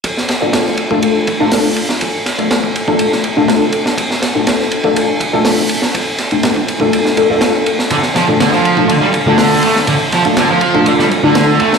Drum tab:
RD |x-x-x-x-x-x---x-|x-xxx-x-x-x-x-x-|x-x-x-x-x-x---x-|x-xxx-x-x-x-x-x-|
HH |------------o---|----------------|------------o---|----------------|
SD |-oo-oo------o--o|--o-o----o--o--o|-oo-oo------o--o|--o-o----o--o--o|
BD |o------o--o-----|o----o-o--------|o------o--o-----|o----o-o--------|

RD |x-x-x-x-x-x---x-|x-xxx-x-x-x-x-x-|
HH |------------o---|----------------|
SD |-oo-oo------o--o|--o-o----o--o--o|
BD |o------o--o-----|o----o-o--------|